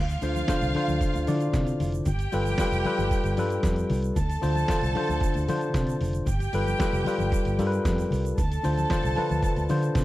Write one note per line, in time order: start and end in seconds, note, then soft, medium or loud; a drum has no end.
0.00 0.16 D2 loud
0.00 1.76 F4 medium
0.00 1.76 F5 loud
0.09 closed hi-hat soft
0.09 muted conga soft
0.09 shaker medium
0.22 0.42 D2 loud
0.22 0.46 D3 medium
0.22 0.46 D4 medium
0.22 0.46 F4 medium
0.22 0.46 C5 medium
0.22 open hi-hat medium
0.22 shaker medium
0.35 closed hi-hat soft
0.35 high conga medium
0.35 shaker medium
0.48 0.72 D3 medium
0.48 0.72 D4 medium
0.48 0.73 F4 medium
0.48 0.73 C5 medium
0.48 kick loud
0.48 snare loud
0.48 closed hi-hat medium
0.48 shaker medium
0.61 0.72 C2 medium
0.61 closed hi-hat soft
0.61 muted conga soft
0.61 shaker soft
0.75 1.22 D3 medium
0.75 1.22 D4 medium
0.75 1.23 F4 medium
0.75 1.23 C5 medium
0.75 open hi-hat medium
0.75 high conga medium
0.75 low conga medium
0.87 0.98 D2 medium
0.87 closed hi-hat soft
0.87 high conga medium
0.87 shaker soft
1.01 kick loud
1.01 closed hi-hat medium
1.01 muted conga soft
1.01 shaker medium
1.14 1.25 D2 medium
1.14 closed hi-hat soft
1.14 muted conga soft
1.14 shaker soft
1.27 2.06 D3 medium
1.27 1.48 D3 loud
1.27 2.07 D4 medium
1.27 1.34 E4 medium
1.27 2.07 D5 medium
1.27 open hi-hat medium
1.27 high conga medium
1.27 shaker medium
1.34 2.10 F4 medium
1.40 closed hi-hat soft
1.40 shaker soft
1.54 1.73 C3 medium
1.54 kick loud
1.54 snare medium
1.54 closed hi-hat medium
1.54 muted conga soft
1.54 shaker medium
1.67 closed hi-hat soft
1.67 shaker soft
1.80 2.00 F1 medium
1.80 open hi-hat medium
1.80 low conga medium
1.80 shaker soft
1.92 closed hi-hat soft
1.92 shaker medium
2.06 2.26 G1 medium
2.06 3.87 G4 loud
2.06 3.87 G5 loud
2.06 kick medium
2.06 closed hi-hat medium
2.06 low conga medium
2.06 shaker medium
2.19 closed hi-hat soft
2.19 shaker medium
2.32 2.53 G1 loud
2.32 2.56 G3 medium
2.32 2.56 F4 medium
2.32 2.57 A4 medium
2.32 2.57 B4 loud
2.32 open hi-hat medium
2.32 shaker medium
2.46 closed hi-hat soft
2.46 high conga medium
2.46 shaker medium
2.58 2.83 G3 medium
2.58 2.83 F4 medium
2.58 2.83 A4 medium
2.58 2.83 B4 medium
2.58 kick loud
2.58 snare loud
2.58 closed hi-hat medium
2.58 shaker medium
2.71 2.82 F1 medium
2.71 closed hi-hat soft
2.71 muted conga soft
2.71 shaker soft
2.85 3.32 G3 medium
2.85 3.33 F4 medium
2.85 3.33 A4 medium
2.85 3.33 B4 medium
2.85 open hi-hat medium
2.85 high conga medium
2.85 low conga medium
2.97 3.08 G1 medium
2.97 closed hi-hat medium
2.97 high conga medium
2.97 shaker soft
3.11 kick loud
3.11 closed hi-hat medium
3.11 shaker medium
3.24 3.34 G1 medium
3.24 closed hi-hat soft
3.24 shaker soft
3.37 3.57 G2 medium
3.37 4.17 G3 medium
3.37 4.17 F4 medium
3.37 4.17 A4 medium
3.37 4.18 B4 medium
3.37 open hi-hat medium
3.37 high conga medium
3.37 shaker medium
3.50 closed hi-hat soft
3.50 shaker soft
3.63 3.84 F2 medium
3.63 kick loud
3.63 snare medium
3.63 closed hi-hat medium
3.63 shaker medium
3.76 closed hi-hat soft
3.76 shaker medium
3.90 4.10 C2 medium
3.90 open hi-hat medium
3.90 low conga medium
3.90 shaker soft
4.03 closed hi-hat soft
4.03 shaker medium
4.16 4.36 D2 medium
4.16 5.97 A4 medium
4.16 5.97 A5 loud
4.16 kick medium
4.16 closed hi-hat medium
4.16 muted conga soft
4.16 low conga medium
4.16 shaker medium
4.29 closed hi-hat soft
4.29 muted conga soft
4.29 shaker medium
4.42 4.63 D2 loud
4.42 4.66 D3 medium
4.42 4.66 D4 medium
4.42 4.66 F4 medium
4.42 4.67 C5 medium
4.42 open hi-hat medium
4.42 shaker medium
4.55 closed hi-hat soft
4.55 high conga medium
4.55 shaker medium
4.68 4.92 D3 medium
4.68 4.93 D4 medium
4.68 4.93 F4 medium
4.68 4.93 C5 medium
4.68 kick loud
4.68 snare loud
4.68 closed hi-hat medium
4.68 muted conga soft
4.68 shaker medium
4.81 4.92 C2 loud
4.81 closed hi-hat soft
4.81 muted conga soft
4.81 shaker soft
4.95 5.42 D3 medium
4.95 5.42 D4 medium
4.95 5.43 F4 medium
4.95 5.43 C5 loud
4.95 open hi-hat medium
4.95 high conga medium
4.95 low conga medium
5.08 5.19 D2 medium
5.08 closed hi-hat soft
5.08 high conga medium
5.08 shaker soft
5.20 kick loud
5.20 closed hi-hat medium
5.20 muted conga soft
5.20 shaker medium
5.34 5.45 D2 medium
5.34 closed hi-hat soft
5.34 muted conga soft
5.34 shaker soft
5.48 6.27 D3 medium
5.48 5.68 D3 medium
5.48 6.27 D4 medium
5.48 6.27 F4 medium
5.48 6.28 C5 loud
5.48 open hi-hat medium
5.48 high conga medium
5.48 shaker medium
5.61 closed hi-hat soft
5.61 shaker soft
5.74 5.94 C3 medium
5.74 kick medium
5.74 snare loud
5.74 closed hi-hat medium
5.74 shaker medium
5.87 closed hi-hat medium
5.87 shaker medium
6.01 6.20 F1 medium
6.01 open hi-hat medium
6.01 low conga medium
6.01 shaker soft
6.13 closed hi-hat soft
6.13 shaker medium
6.26 6.46 G1 medium
6.26 8.07 G4 medium
6.26 8.07 G5 loud
6.26 kick medium
6.26 closed hi-hat medium
6.26 muted conga soft
6.26 low conga medium
6.26 shaker medium
6.40 closed hi-hat soft
6.40 muted conga soft
6.40 shaker medium
6.53 6.73 G1 loud
6.53 6.77 G3 medium
6.53 6.77 F4 medium
6.53 6.77 A4 medium
6.53 6.78 B4 loud
6.53 open hi-hat medium
6.53 shaker medium
6.67 closed hi-hat soft
6.67 high conga medium
6.67 shaker medium
6.79 7.03 G3 medium
6.79 7.03 F4 medium
6.79 7.04 A4 medium
6.79 7.04 B4 medium
6.79 kick loud
6.79 snare loud
6.79 closed hi-hat medium
6.79 muted conga soft
6.79 shaker medium
6.93 7.03 F1 medium
6.93 closed hi-hat soft
6.93 shaker soft
7.05 7.53 G3 medium
7.05 7.53 F4 medium
7.05 7.54 A4 medium
7.05 7.54 B4 medium
7.05 open hi-hat medium
7.05 high conga medium
7.05 low conga medium
7.05 shaker medium
7.18 7.29 G1 medium
7.18 closed hi-hat soft
7.18 high conga medium
7.18 shaker soft
7.32 kick loud
7.32 closed hi-hat medium
7.32 muted conga soft
7.32 shaker medium
7.45 7.56 G1 medium
7.45 closed hi-hat soft
7.45 muted conga soft
7.45 shaker soft
7.59 7.78 G2 loud
7.59 8.38 G3 medium
7.59 8.38 F4 medium
7.59 8.38 A4 medium
7.59 7.66 A#4 medium
7.59 open hi-hat medium
7.59 high conga medium
7.59 shaker medium
7.67 8.42 B4 loud
7.72 closed hi-hat soft
7.72 shaker soft
7.85 8.05 F2 medium
7.85 kick loud
7.85 snare loud
7.85 closed hi-hat medium
7.85 shaker medium
7.98 snare soft
7.98 closed hi-hat medium
7.98 muted conga soft
7.98 shaker medium
8.11 8.32 C2 loud
8.11 open hi-hat medium
8.11 low conga medium
8.11 shaker soft
8.25 closed hi-hat soft
8.25 shaker medium
8.38 8.57 D2 loud
8.38 10.05 A4 medium
8.38 10.05 A5 loud
8.38 kick medium
8.38 closed hi-hat medium
8.38 muted conga soft
8.38 low conga medium
8.38 shaker medium
8.51 closed hi-hat soft
8.51 muted conga soft
8.51 shaker soft
8.63 8.84 D2 medium
8.63 8.87 D3 medium
8.63 8.87 D4 medium
8.63 8.87 F4 medium
8.63 8.88 C5 medium
8.63 open hi-hat medium
8.63 shaker medium
8.77 closed hi-hat soft
8.77 high conga medium
8.77 shaker medium
8.90 9.13 D3 medium
8.90 9.14 D4 medium
8.90 9.14 F4 medium
8.90 9.14 C5 medium
8.90 kick loud
8.90 snare loud
8.90 closed hi-hat medium
8.90 muted conga soft
8.90 shaker medium
9.03 9.14 C2 medium
9.03 closed hi-hat soft
9.03 shaker medium
9.16 9.63 D3 medium
9.16 9.63 D4 medium
9.16 9.63 F4 medium
9.16 9.64 B4 loud
9.16 open hi-hat medium
9.16 high conga medium
9.16 low conga medium
9.30 9.40 D2 medium
9.30 closed hi-hat soft
9.30 high conga medium
9.30 shaker soft
9.42 kick loud
9.42 closed hi-hat medium
9.42 muted conga soft
9.42 shaker medium
9.56 9.66 D2 medium
9.56 closed hi-hat soft
9.56 shaker soft
9.69 10.05 D3 medium
9.69 9.89 D3 loud
9.69 10.05 D4 medium
9.69 10.05 F4 medium
9.69 10.05 C5 medium
9.69 open hi-hat medium
9.69 high conga medium
9.69 shaker medium
9.83 closed hi-hat soft
9.83 shaker soft
9.95 10.05 C3 medium
9.95 kick loud
9.95 snare loud
9.95 closed hi-hat medium
9.95 muted conga soft
9.95 shaker medium